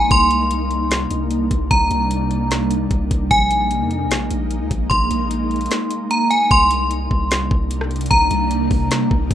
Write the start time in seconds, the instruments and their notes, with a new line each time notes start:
Already playing: 808-style bass A#1, ambient pad A#3 D#4
0.11 808-style bass C2, ambient pad C3 G3 D4, synth bell C6, kick, closed hi-hat
0.31 closed hi-hat
0.51 closed hi-hat
0.71 closed hi-hat
0.91 snare, closed hi-hat
1.11 808-style bass C2, closed hi-hat
1.31 closed hi-hat
1.51 808-style bass C2, kick, closed hi-hat
1.71 808-style bass C2, synth bell A#5, kick, closed hi-hat
1.91 808-style bass C2, closed hi-hat
2.11 closed hi-hat
2.31 closed hi-hat
2.51 snare, closed hi-hat
2.71 closed hi-hat
2.91 808-style bass C2, kick, closed hi-hat
3.11 808-style bass C2, kick, closed hi-hat
3.31 808-style bass A#1, ambient pad G#3 A#3 D#4, synth bell G#5, kick, closed hi-hat
3.51 closed hi-hat
3.71 closed hi-hat
3.81 808-style bass F2
3.91 closed hi-hat
4.06 808-style bass A#1
4.11 snare, closed hi-hat
4.31 808-style bass A#1, closed hi-hat
4.51 closed hi-hat
4.61 808-style bass D2
4.71 808-style bass A#1, kick, closed hi-hat
4.90 808-style bass A#1, synth bell C6, kick, closed hi-hat
5.11 808-style bass A#1, closed hi-hat
5.31 closed hi-hat
5.51 closed hi-hat
5.56 closed hi-hat
5.61 closed hi-hat
5.66 closed hi-hat
5.71 snare, closed hi-hat
5.91 closed hi-hat
6.11 synth bell A#5, closed hi-hat
6.31 synth bell G#5, closed hi-hat
6.51 808-style bass C2, ambient pad C3 G3 A#3 D4 D#4, synth bell C6, kick, closed hi-hat
6.71 closed hi-hat
6.91 closed hi-hat
7.11 808-style bass C2, kick
7.31 snare, closed hi-hat
7.51 808-style bass C2, kick
7.71 closed hi-hat
7.81 cross-stick
7.91 closed hi-hat
7.96 closed hi-hat
8.01 closed hi-hat
8.06 closed hi-hat
8.11 808-style bass C2, synth bell A#5, kick, closed hi-hat
8.31 808-style bass C2, closed hi-hat
8.51 closed hi-hat
8.71 808-style bass C2, kick, open hi-hat
8.91 snare, closed hi-hat
9.11 808-style bass C2, kick
9.31 808-style bass C2, kick, closed hi-hat